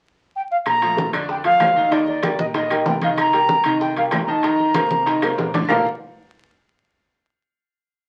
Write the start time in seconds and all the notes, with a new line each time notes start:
0.35 G5
0.50 F5
0.66 A#1 A#5, high bongo, high conga, high timbale, claves
0.82 F3 A3 F4, high conga, high timbale
0.97 high bongo, high conga, low timbale
1.13 F2 D3 D4 D5, high conga, high timbale, claves
1.29 G5, high bongo, high conga
1.44 F3 F4 A4 F5, high conga, high timbale
1.60 D#2, high bongo, low bongo, high conga, high timbale, low timbale, claves
1.76 D#3 D#4 D#5
1.91 D#3 D#4 D5 D#5, high bongo, high conga, high timbale
2.07 D5, high bongo, high conga
2.23 G3 G4 A#4, high bongo, high conga, high timbale, low timbale, claves
2.39 A#1 D#5, high bongo, high conga
2.54 D#3 D#4 D#5, high bongo, high conga, high timbale
2.70 G3 G4 A#4, high conga, high timbale, claves
2.86 C2 G5, high bongo, low bongo, high conga, low timbale
3.01 D#3 D#4 D#5 F5, high bongo, high conga, high timbale
3.18 A#5, high bongo, high conga, high timbale, claves
3.33 G3 G4 A#4, high conga, high timbale
3.48 high bongo, high conga, low timbale
3.64 C2 D#3 D#4 D#5, high conga, high timbale, claves
3.81 G5, high bongo, high conga
3.96 G3 G4 A#4 F5, high conga, high timbale
4.11 F2 G5, high bongo, low bongo, high conga, high timbale, low timbale, claves
4.25 D#3 D#4 D#5 A#5
4.29 A5
4.43 D#3 D#4 D#5 A#5, high bongo, high conga, high timbale
4.59 high bongo, high conga
4.74 A#3 A#4 C5, high bongo, high conga, high timbale, low timbale, claves
4.91 C2, high bongo, high conga
5.06 D#3 D#4 D#5, high bongo, high conga, high timbale
5.22 A#3 A#4 C5, high bongo, high conga, high timbale, claves
5.38 A#1, high bongo, high conga, low timbale
5.54 D3 D4 D5, low bongo, high conga, high timbale
5.69 A#1 A#3 F4 A4 A#4 D5 F5, low bongo, low conga, low timbale, claves